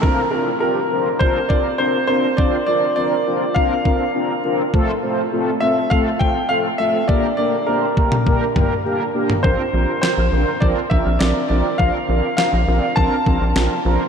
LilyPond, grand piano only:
\new Staff \with { instrumentName = "Grand piano" } { \time 4/4 \key bes \lydian \tempo 4 = 102 bes'8 bes'8 bes'4 c''8 d''8 c''8 c''8 | d''8 d''8 d''4 f''4. r8 | r4. e''8 f''8 g''8 f''8 e''8 | d''8 d''8 bes'2 r4 |
c''4 c''4 d''8 e''8 d''8 d''8 | f''4 f''4 a''4. r8 | }